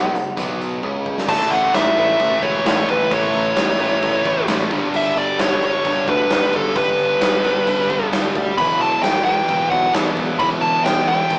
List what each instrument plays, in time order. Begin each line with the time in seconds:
Already playing: picked electric bass B1, overdriven electric guitar B2 F#3 B3, lead electric guitar F#5
0.14 picked electric bass F#1, overdriven electric guitar F#2 C#3, closed hi-hat
0.37 picked electric bass B1, overdriven electric guitar B2 F#3 B3, kick, closed hi-hat
0.61 closed hi-hat
0.83 picked electric bass C#2, overdriven electric guitar C#3 G#3 C#4, kick
1.06 kick
1.18 snare
1.27 picked electric bass A1, overdriven electric guitar A2 E3 A3, tonewheel organ A3 E4 B4, lead electric guitar A5, kick, crash
1.50 picked electric bass A1, lead electric guitar F#5, crash
1.74 picked electric bass A1, lead electric guitar E5, snare, crash
1.96 picked electric bass A1, distorted electric guitar A2 E3 A3, lead electric guitar E5, crash
2.19 picked electric bass A1, distorted electric guitar A2 E3 A3, kick, crash
2.43 picked electric bass E1, overdriven electric guitar A2 E3 A3, lead electric guitar C#5, kick, crash
2.65 picked electric bass A1, overdriven electric guitar A2 E3 A3, lead electric guitar C#5, snare, crash
2.88 picked electric bass A1, lead electric guitar B4, kick, crash
3.11 picked electric bass A1, overdriven electric guitar A2 E3 A3, lead electric guitar C#5, kick, crash
3.33 picked electric bass A1, crash
3.56 picked electric bass A1, snare, crash
3.78 picked electric bass A1, distorted electric guitar A2 E3 A3, crash
4.02 picked electric bass A1, distorted electric guitar A2 E3 A3, kick, crash
4.24 picked electric bass A1, overdriven electric guitar A2 E3 A3, kick, crash
4.46 picked electric bass A1, overdriven electric guitar A2 E3 A3, snare, crash
4.70 picked electric bass G1, overdriven electric guitar G2 D3 G3, tonewheel organ G3 D4 A4, kick, crash
4.93 picked electric bass G1, lead electric guitar E5, crash
5.15 picked electric bass G1, lead electric guitar D5, crash
5.38 picked electric bass G1, distorted electric guitar G2 D3 G3, lead electric guitar C#5, snare, crash
5.61 picked electric bass G1, distorted electric guitar G2 D3 G3, lead electric guitar C#5, crash
5.84 picked electric bass G1, overdriven electric guitar G2 D3 G3, kick, crash
6.06 picked electric bass D2, overdriven electric guitar G2 D3 G3, lead electric guitar B4, kick, crash
6.30 picked electric bass G1, lead electric guitar B4, snare, crash
6.52 picked electric bass G1, overdriven electric guitar G2 D3 G3, tonewheel organ C#4, lead electric guitar A4, kick, crash
6.75 picked electric bass G1, lead electric guitar B4, kick, crash
6.99 picked electric bass G1, crash
7.21 picked electric bass G1, distorted electric guitar G2 D3, snare, crash
7.25 distorted electric guitar G3
7.43 picked electric bass G1, distorted electric guitar G2 D3 G3, crash
7.66 picked electric bass G1, overdriven electric guitar G2 D3 G3, kick, crash
7.89 picked electric bass G1, overdriven electric guitar G2 D3 G3, kick, crash
8.11 picked electric bass G1, snare, crash
8.35 picked electric bass D2, kick, crash
8.58 picked electric bass E1, overdriven electric guitar E2 B2 E3, tonewheel organ E3 F#3 B3, lead electric guitar B5, kick, crash
8.80 picked electric bass E1, lead electric guitar A5, crash
9.03 picked electric bass E1, lead electric guitar G5, snare, crash
9.25 picked electric bass E1, distorted electric guitar E2 B2 E3, lead electric guitar G5, crash
9.47 picked electric bass E1, distorted electric guitar E2 B2 E3, kick, crash
9.70 picked electric bass B1, overdriven electric guitar B2 E3, lead electric guitar F#5, kick, crash
9.75 overdriven electric guitar E2
9.93 picked electric bass E1, overdriven electric guitar E2 B2 E3, snare, crash
10.16 picked electric bass E1, kick, crash
10.39 picked electric bass E1, overdriven electric guitar E2 B2 E3, tonewheel organ C#4, lead electric guitar B5, kick, crash
10.61 picked electric bass E1, lead electric guitar A5, crash
10.83 picked electric bass E1, lead electric guitar G5, snare, crash
11.07 picked electric bass E1, distorted electric guitar B2 E3, lead electric guitar G5, crash
11.11 distorted electric guitar E2
11.30 picked electric bass E1, distorted electric guitar E2 B2 E3, kick, crash